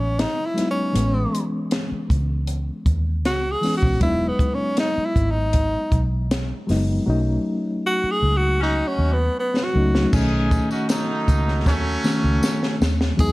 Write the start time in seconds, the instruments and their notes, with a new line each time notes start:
Already playing: fingered electric bass A1, tenor saxophone C#4
0.19 tenor saxophone D#4, snare, closed hi-hat
0.45 tenor saxophone E4
0.54 reed electric piano F#3 G#3 B3, closed hi-hat
0.58 reed electric piano D#4, snare
0.71 tenor saxophone C#4
0.92 fingered electric bass A1, reed electric piano E3 G#3 B3 C#4, closed hi-hat
1.35 closed hi-hat
1.71 snare, closed hi-hat
1.92 muted fingered electric bass stroke
2.10 fingered electric bass C#2, kick, closed hi-hat
2.47 closed hi-hat
2.86 fingered electric bass D#2, kick, closed hi-hat
3.25 fingered electric bass C#2, tenor saxophone F#4, snare, closed hi-hat
3.51 tenor saxophone G#4
3.61 reed electric piano E3 G#3 B3 C#4, snare, open hi-hat
3.77 tenor saxophone F#4
3.83 fingered electric bass B1, kick
3.99 fingered electric bass E1, reed electric piano F#3 G#3 B3 D4, tenor saxophone E4, kick, closed hi-hat
4.09 reed electric piano D#4
4.28 tenor saxophone B3
4.39 kick, closed hi-hat
4.54 tenor saxophone C#4
4.77 tenor saxophone D#4, snare, closed hi-hat
4.98 muted fingered electric bass stroke
5.05 tenor saxophone E4
5.16 fingered electric bass G#1, kick, closed hi-hat
5.31 tenor saxophone D#4
5.53 kick, closed hi-hat
5.92 fingered electric bass B1, kick, closed hi-hat
6.31 snare, closed hi-hat
6.67 fingered electric bass F#1, reed electric piano F#3 G#3 B3, snare, open hi-hat
6.71 reed electric piano D#4
7.06 fingered electric bass B1, reed electric piano F#3 A3 C#4 D#4
7.86 tenor saxophone F#4
8.04 muted fingered electric bass stroke
8.11 tenor saxophone G#4
8.23 fingered electric bass C#2
8.37 tenor saxophone F#4
8.60 horn section C#4 D#4 F#4, tenor saxophone D#4
8.87 tenor saxophone C#4
8.99 fingered electric bass D#2
9.13 tenor saxophone B3
9.39 tenor saxophone B3
9.57 snare
9.64 tenor saxophone F#4
9.74 fingered electric bass C#2, reed electric piano F#3 A3 C#4 D#4
9.95 snare
10.13 fingered electric bass B1, reed electric piano D#3 A3 C#4, horn section C#4 D#4 G#4, kick, crash, tambourine
10.51 kick, closed hi-hat, tambourine
10.71 horn section C#4 D#4 F#4, tambourine
10.89 horn section F#3 A3 D#4, snare, closed hi-hat, tambourine
11.28 fingered electric bass C#2, kick, closed hi-hat, tambourine
11.48 snare
11.66 fingered electric bass D#2, horn section F#3 A3 C#4, kick, snare, tambourine
12.04 reed electric piano D#3 A3 C#4, snare, tambourine
12.24 fingered electric bass C#2
12.43 snare, tambourine
12.63 snare
12.81 fingered electric bass D#2, snare, tambourine
13.01 snare
13.17 fingered electric bass E2, reed electric piano F#3 G#3 B3 D#4, horn section G#3 E4 G#4, tenor saxophone G#4, kick, closed hi-hat, tambourine